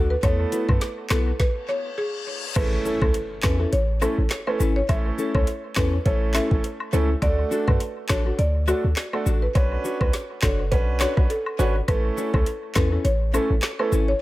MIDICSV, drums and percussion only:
0, 0, Header, 1, 2, 480
1, 0, Start_track
1, 0, Key_signature, 3, "major"
1, 0, Tempo, 582524
1, 191, Time_signature, 4, 2, 24, 8
1, 11715, End_track
2, 0, Start_track
2, 0, Title_t, "Drums"
2, 190, Note_on_c, 9, 42, 67
2, 191, Note_on_c, 9, 36, 115
2, 191, Note_on_c, 9, 76, 72
2, 273, Note_off_c, 9, 36, 0
2, 273, Note_off_c, 9, 42, 0
2, 273, Note_off_c, 9, 76, 0
2, 430, Note_on_c, 9, 42, 65
2, 434, Note_on_c, 9, 69, 68
2, 513, Note_off_c, 9, 42, 0
2, 516, Note_off_c, 9, 69, 0
2, 566, Note_on_c, 9, 36, 98
2, 569, Note_on_c, 9, 76, 73
2, 648, Note_off_c, 9, 36, 0
2, 651, Note_off_c, 9, 76, 0
2, 670, Note_on_c, 9, 42, 79
2, 672, Note_on_c, 9, 38, 79
2, 752, Note_off_c, 9, 42, 0
2, 754, Note_off_c, 9, 38, 0
2, 904, Note_on_c, 9, 39, 89
2, 910, Note_on_c, 9, 38, 118
2, 910, Note_on_c, 9, 42, 52
2, 911, Note_on_c, 9, 69, 78
2, 911, Note_on_c, 9, 76, 77
2, 987, Note_off_c, 9, 39, 0
2, 992, Note_off_c, 9, 38, 0
2, 993, Note_off_c, 9, 42, 0
2, 993, Note_off_c, 9, 69, 0
2, 993, Note_off_c, 9, 76, 0
2, 1150, Note_on_c, 9, 38, 92
2, 1151, Note_on_c, 9, 36, 108
2, 1233, Note_off_c, 9, 36, 0
2, 1233, Note_off_c, 9, 38, 0
2, 2110, Note_on_c, 9, 76, 73
2, 2111, Note_on_c, 9, 36, 114
2, 2111, Note_on_c, 9, 42, 66
2, 2111, Note_on_c, 9, 49, 101
2, 2192, Note_off_c, 9, 76, 0
2, 2193, Note_off_c, 9, 36, 0
2, 2193, Note_off_c, 9, 42, 0
2, 2193, Note_off_c, 9, 49, 0
2, 2353, Note_on_c, 9, 69, 66
2, 2436, Note_off_c, 9, 69, 0
2, 2486, Note_on_c, 9, 36, 103
2, 2489, Note_on_c, 9, 76, 74
2, 2568, Note_off_c, 9, 36, 0
2, 2571, Note_off_c, 9, 76, 0
2, 2589, Note_on_c, 9, 42, 82
2, 2671, Note_off_c, 9, 42, 0
2, 2824, Note_on_c, 9, 39, 93
2, 2829, Note_on_c, 9, 38, 115
2, 2831, Note_on_c, 9, 69, 75
2, 2831, Note_on_c, 9, 76, 81
2, 2833, Note_on_c, 9, 36, 95
2, 2907, Note_off_c, 9, 39, 0
2, 2912, Note_off_c, 9, 38, 0
2, 2914, Note_off_c, 9, 69, 0
2, 2914, Note_off_c, 9, 76, 0
2, 2915, Note_off_c, 9, 36, 0
2, 3070, Note_on_c, 9, 42, 62
2, 3152, Note_off_c, 9, 42, 0
2, 3312, Note_on_c, 9, 69, 82
2, 3312, Note_on_c, 9, 76, 84
2, 3394, Note_off_c, 9, 69, 0
2, 3394, Note_off_c, 9, 76, 0
2, 3545, Note_on_c, 9, 39, 85
2, 3550, Note_on_c, 9, 38, 112
2, 3551, Note_on_c, 9, 42, 72
2, 3627, Note_off_c, 9, 39, 0
2, 3632, Note_off_c, 9, 38, 0
2, 3633, Note_off_c, 9, 42, 0
2, 3686, Note_on_c, 9, 76, 74
2, 3768, Note_off_c, 9, 76, 0
2, 3792, Note_on_c, 9, 69, 80
2, 3874, Note_off_c, 9, 69, 0
2, 4030, Note_on_c, 9, 36, 111
2, 4030, Note_on_c, 9, 42, 70
2, 4031, Note_on_c, 9, 76, 74
2, 4112, Note_off_c, 9, 42, 0
2, 4113, Note_off_c, 9, 36, 0
2, 4113, Note_off_c, 9, 76, 0
2, 4273, Note_on_c, 9, 69, 66
2, 4356, Note_off_c, 9, 69, 0
2, 4406, Note_on_c, 9, 36, 102
2, 4408, Note_on_c, 9, 76, 78
2, 4488, Note_off_c, 9, 36, 0
2, 4491, Note_off_c, 9, 76, 0
2, 4509, Note_on_c, 9, 42, 82
2, 4591, Note_off_c, 9, 42, 0
2, 4744, Note_on_c, 9, 39, 93
2, 4749, Note_on_c, 9, 38, 121
2, 4751, Note_on_c, 9, 69, 82
2, 4751, Note_on_c, 9, 76, 82
2, 4753, Note_on_c, 9, 36, 96
2, 4826, Note_off_c, 9, 39, 0
2, 4832, Note_off_c, 9, 38, 0
2, 4833, Note_off_c, 9, 69, 0
2, 4833, Note_off_c, 9, 76, 0
2, 4835, Note_off_c, 9, 36, 0
2, 4990, Note_on_c, 9, 42, 61
2, 4991, Note_on_c, 9, 36, 98
2, 5072, Note_off_c, 9, 42, 0
2, 5073, Note_off_c, 9, 36, 0
2, 5224, Note_on_c, 9, 39, 97
2, 5229, Note_on_c, 9, 38, 119
2, 5232, Note_on_c, 9, 69, 76
2, 5232, Note_on_c, 9, 76, 80
2, 5306, Note_off_c, 9, 39, 0
2, 5312, Note_off_c, 9, 38, 0
2, 5314, Note_off_c, 9, 69, 0
2, 5314, Note_off_c, 9, 76, 0
2, 5366, Note_on_c, 9, 36, 91
2, 5449, Note_off_c, 9, 36, 0
2, 5472, Note_on_c, 9, 42, 73
2, 5554, Note_off_c, 9, 42, 0
2, 5606, Note_on_c, 9, 76, 73
2, 5688, Note_off_c, 9, 76, 0
2, 5712, Note_on_c, 9, 69, 78
2, 5794, Note_off_c, 9, 69, 0
2, 5950, Note_on_c, 9, 76, 73
2, 5951, Note_on_c, 9, 36, 116
2, 5951, Note_on_c, 9, 42, 67
2, 6033, Note_off_c, 9, 36, 0
2, 6033, Note_off_c, 9, 76, 0
2, 6034, Note_off_c, 9, 42, 0
2, 6193, Note_on_c, 9, 69, 67
2, 6276, Note_off_c, 9, 69, 0
2, 6326, Note_on_c, 9, 36, 101
2, 6328, Note_on_c, 9, 76, 77
2, 6409, Note_off_c, 9, 36, 0
2, 6410, Note_off_c, 9, 76, 0
2, 6430, Note_on_c, 9, 42, 78
2, 6512, Note_off_c, 9, 42, 0
2, 6665, Note_on_c, 9, 39, 91
2, 6670, Note_on_c, 9, 38, 120
2, 6671, Note_on_c, 9, 69, 77
2, 6671, Note_on_c, 9, 76, 79
2, 6674, Note_on_c, 9, 36, 99
2, 6747, Note_off_c, 9, 39, 0
2, 6753, Note_off_c, 9, 38, 0
2, 6754, Note_off_c, 9, 69, 0
2, 6754, Note_off_c, 9, 76, 0
2, 6756, Note_off_c, 9, 36, 0
2, 6911, Note_on_c, 9, 42, 60
2, 6994, Note_off_c, 9, 42, 0
2, 7152, Note_on_c, 9, 69, 81
2, 7152, Note_on_c, 9, 76, 81
2, 7234, Note_off_c, 9, 69, 0
2, 7234, Note_off_c, 9, 76, 0
2, 7386, Note_on_c, 9, 39, 87
2, 7391, Note_on_c, 9, 38, 110
2, 7392, Note_on_c, 9, 42, 70
2, 7468, Note_off_c, 9, 39, 0
2, 7474, Note_off_c, 9, 38, 0
2, 7475, Note_off_c, 9, 42, 0
2, 7526, Note_on_c, 9, 76, 73
2, 7608, Note_off_c, 9, 76, 0
2, 7632, Note_on_c, 9, 69, 80
2, 7715, Note_off_c, 9, 69, 0
2, 7871, Note_on_c, 9, 76, 71
2, 7872, Note_on_c, 9, 36, 118
2, 7872, Note_on_c, 9, 42, 67
2, 7953, Note_off_c, 9, 76, 0
2, 7954, Note_off_c, 9, 36, 0
2, 7954, Note_off_c, 9, 42, 0
2, 8114, Note_on_c, 9, 69, 67
2, 8196, Note_off_c, 9, 69, 0
2, 8247, Note_on_c, 9, 36, 98
2, 8249, Note_on_c, 9, 76, 73
2, 8329, Note_off_c, 9, 36, 0
2, 8332, Note_off_c, 9, 76, 0
2, 8351, Note_on_c, 9, 42, 83
2, 8353, Note_on_c, 9, 38, 79
2, 8433, Note_off_c, 9, 42, 0
2, 8435, Note_off_c, 9, 38, 0
2, 8585, Note_on_c, 9, 39, 94
2, 8590, Note_on_c, 9, 38, 115
2, 8592, Note_on_c, 9, 69, 75
2, 8592, Note_on_c, 9, 76, 80
2, 8594, Note_on_c, 9, 36, 93
2, 8667, Note_off_c, 9, 39, 0
2, 8673, Note_off_c, 9, 38, 0
2, 8674, Note_off_c, 9, 69, 0
2, 8674, Note_off_c, 9, 76, 0
2, 8676, Note_off_c, 9, 36, 0
2, 8831, Note_on_c, 9, 42, 61
2, 8832, Note_on_c, 9, 36, 94
2, 8913, Note_off_c, 9, 42, 0
2, 8914, Note_off_c, 9, 36, 0
2, 9064, Note_on_c, 9, 39, 97
2, 9070, Note_on_c, 9, 38, 123
2, 9073, Note_on_c, 9, 69, 82
2, 9073, Note_on_c, 9, 76, 76
2, 9147, Note_off_c, 9, 39, 0
2, 9152, Note_off_c, 9, 38, 0
2, 9156, Note_off_c, 9, 69, 0
2, 9156, Note_off_c, 9, 76, 0
2, 9206, Note_on_c, 9, 37, 86
2, 9207, Note_on_c, 9, 36, 88
2, 9288, Note_off_c, 9, 37, 0
2, 9289, Note_off_c, 9, 36, 0
2, 9312, Note_on_c, 9, 42, 72
2, 9394, Note_off_c, 9, 42, 0
2, 9446, Note_on_c, 9, 76, 72
2, 9529, Note_off_c, 9, 76, 0
2, 9553, Note_on_c, 9, 69, 80
2, 9635, Note_off_c, 9, 69, 0
2, 9791, Note_on_c, 9, 42, 69
2, 9791, Note_on_c, 9, 76, 72
2, 9792, Note_on_c, 9, 36, 113
2, 9873, Note_off_c, 9, 76, 0
2, 9874, Note_off_c, 9, 36, 0
2, 9874, Note_off_c, 9, 42, 0
2, 10033, Note_on_c, 9, 69, 69
2, 10116, Note_off_c, 9, 69, 0
2, 10167, Note_on_c, 9, 36, 103
2, 10169, Note_on_c, 9, 76, 77
2, 10249, Note_off_c, 9, 36, 0
2, 10251, Note_off_c, 9, 76, 0
2, 10270, Note_on_c, 9, 42, 79
2, 10353, Note_off_c, 9, 42, 0
2, 10505, Note_on_c, 9, 39, 90
2, 10510, Note_on_c, 9, 38, 116
2, 10512, Note_on_c, 9, 69, 77
2, 10512, Note_on_c, 9, 76, 80
2, 10514, Note_on_c, 9, 36, 100
2, 10587, Note_off_c, 9, 39, 0
2, 10593, Note_off_c, 9, 38, 0
2, 10594, Note_off_c, 9, 69, 0
2, 10594, Note_off_c, 9, 76, 0
2, 10596, Note_off_c, 9, 36, 0
2, 10751, Note_on_c, 9, 42, 61
2, 10834, Note_off_c, 9, 42, 0
2, 10993, Note_on_c, 9, 69, 82
2, 10993, Note_on_c, 9, 76, 83
2, 11075, Note_off_c, 9, 69, 0
2, 11075, Note_off_c, 9, 76, 0
2, 11225, Note_on_c, 9, 39, 89
2, 11231, Note_on_c, 9, 38, 109
2, 11232, Note_on_c, 9, 42, 71
2, 11308, Note_off_c, 9, 39, 0
2, 11313, Note_off_c, 9, 38, 0
2, 11314, Note_off_c, 9, 42, 0
2, 11366, Note_on_c, 9, 76, 74
2, 11449, Note_off_c, 9, 76, 0
2, 11473, Note_on_c, 9, 69, 80
2, 11556, Note_off_c, 9, 69, 0
2, 11715, End_track
0, 0, End_of_file